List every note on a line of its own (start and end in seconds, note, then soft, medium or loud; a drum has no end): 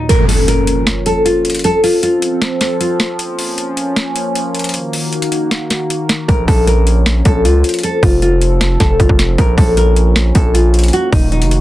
0.09 1.63 F3 medium
0.09 1.63 A#3 medium
0.09 1.63 C#4 medium
0.09 0.25 A#4 loud
0.09 closed hi-hat medium
0.09 impact medium
0.28 0.44 A4 medium
0.28 open hi-hat medium
0.48 1.03 A#4 medium
0.48 closed hi-hat medium
0.67 closed hi-hat medium
0.87 snare loud
0.87 closed hi-hat medium
1.06 1.22 A4 medium
1.06 closed hi-hat medium
1.25 1.62 F4 medium
1.25 closed hi-hat medium
1.45 closed hi-hat medium
1.50 closed hi-hat medium
1.55 closed hi-hat medium
1.59 closed hi-hat medium
1.64 4.71 F3 medium
1.64 3.18 C4 medium
1.64 3.17 A4 medium
1.64 1.80 A4 loud
1.64 closed hi-hat medium
1.84 2.00 F4 medium
1.84 open hi-hat medium
2.03 2.57 F4 medium
2.03 closed hi-hat medium
2.22 closed hi-hat medium
2.42 snare loud
2.42 closed hi-hat medium
2.61 2.77 A4 medium
2.61 snare medium
2.61 closed hi-hat medium
2.80 3.17 F4 medium
2.80 closed hi-hat medium
3.00 snare loud
3.00 closed hi-hat medium
3.19 7.80 A#3 medium
3.19 4.72 C#4 medium
3.19 closed hi-hat medium
3.39 open hi-hat medium
3.58 closed hi-hat medium
3.77 closed hi-hat medium
3.96 snare loud
3.96 closed hi-hat medium
4.16 closed hi-hat medium
4.35 closed hi-hat medium
4.55 closed hi-hat medium
4.59 closed hi-hat medium
4.64 closed hi-hat medium
4.69 closed hi-hat medium
4.74 6.27 D#3 medium
4.74 6.27 F#4 medium
4.74 closed hi-hat medium
4.93 open hi-hat medium
5.13 closed hi-hat soft
5.22 closed hi-hat medium
5.32 closed hi-hat medium
5.51 snare loud
5.51 closed hi-hat medium
5.70 snare medium
5.70 closed hi-hat medium
5.90 closed hi-hat medium
6.09 snare loud
6.09 closed hi-hat medium
6.28 6.47 A#1 loud
6.28 9.35 F3 medium
6.28 7.82 C#4 medium
6.28 6.45 A#4 loud
6.28 kick loud
6.28 closed hi-hat medium
6.48 7.22 A#1 loud
6.48 6.64 A4 medium
6.48 kick loud
6.48 open hi-hat medium
6.67 7.22 A#4 medium
6.67 closed hi-hat medium
6.87 closed hi-hat medium
7.06 snare loud
7.06 closed hi-hat medium
7.25 7.46 A#1 loud
7.25 7.42 A4 medium
7.25 kick medium
7.25 closed hi-hat medium
7.45 7.63 C#2 loud
7.45 7.81 F4 medium
7.45 closed hi-hat medium
7.64 closed hi-hat medium
7.69 closed hi-hat medium
7.74 closed hi-hat medium
7.79 closed hi-hat medium
7.83 9.37 C4 medium
7.83 9.37 A4 medium
7.83 8.00 A4 loud
7.83 closed hi-hat medium
8.03 8.77 F1 loud
8.03 8.19 F4 medium
8.03 kick loud
8.03 open hi-hat medium
8.22 8.77 F4 medium
8.22 closed hi-hat medium
8.41 closed hi-hat medium
8.61 snare loud
8.61 closed hi-hat medium
8.80 8.99 F1 loud
8.80 8.96 A4 medium
8.80 kick medium
8.80 snare medium
8.80 closed hi-hat medium
9.00 9.09 F1 loud
9.00 9.36 F4 medium
9.00 kick medium
9.00 closed hi-hat medium
9.09 9.37 F1 loud
9.09 kick loud
9.19 snare loud
9.19 closed hi-hat medium
9.38 9.57 A#1 loud
9.38 10.92 F3 medium
9.38 11.61 A#3 medium
9.38 10.92 C#4 medium
9.38 9.55 A#4 loud
9.38 kick loud
9.38 closed hi-hat medium
9.58 10.32 A#1 loud
9.58 9.74 A4 medium
9.58 kick loud
9.58 open hi-hat medium
9.77 10.32 A#4 medium
9.77 closed hi-hat medium
9.96 closed hi-hat medium
10.16 snare loud
10.16 closed hi-hat medium
10.35 10.91 A#1 loud
10.35 10.51 A4 medium
10.35 kick medium
10.35 closed hi-hat medium
10.54 10.91 F4 medium
10.54 closed hi-hat medium
10.74 closed hi-hat medium
10.79 closed hi-hat medium
10.84 closed hi-hat medium
10.88 closed hi-hat medium
10.93 11.61 D#3 medium
10.93 11.61 F#4 medium
10.93 11.09 F#4 loud
10.93 closed hi-hat medium
11.13 11.43 D#1 loud
11.13 11.29 D#4 medium
11.13 kick loud
11.13 open hi-hat medium
11.32 11.61 D#4 medium
11.32 closed hi-hat soft
11.42 11.61 F1 loud
11.42 closed hi-hat medium
11.51 closed hi-hat medium